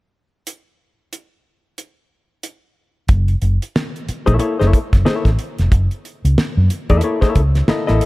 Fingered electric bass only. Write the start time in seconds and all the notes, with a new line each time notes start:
3.09 F#1
3.42 F#1
4.09 muted fingered electric bass stroke
4.27 A#1
4.61 F#1
4.93 F#1
5.07 muted fingered electric bass stroke
5.25 A1
5.59 F1
5.72 F#1
6.25 C#2
6.57 F#2
6.90 E2
7.22 muted fingered electric bass stroke
7.36 C#2
7.70 muted fingered electric bass stroke
7.90 A1